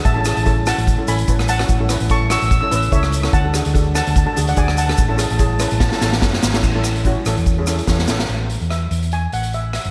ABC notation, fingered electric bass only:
X:1
M:4/4
L:1/16
Q:"Swing 16ths" 1/4=146
K:A
V:1 name="Fingered electric bass" clef=bass
A,,,3 A,,,4 A,,,2 z A,,,2 A,,,4 | A,,,3 A,,,4 A,,,2 z A,,,2 C,,4 | D,,3 D,,4 D,,2 z D,,2 D,,4 | A,,,3 A,,,4 A,,,2 z A,,,2 F,,,2 G,,,2 |
A,,,6 A,,, E,,4- E,, E,,2 A,,,2 | A,,,3 E,,3 E,,4 A,,,4- A,,, F,,, |]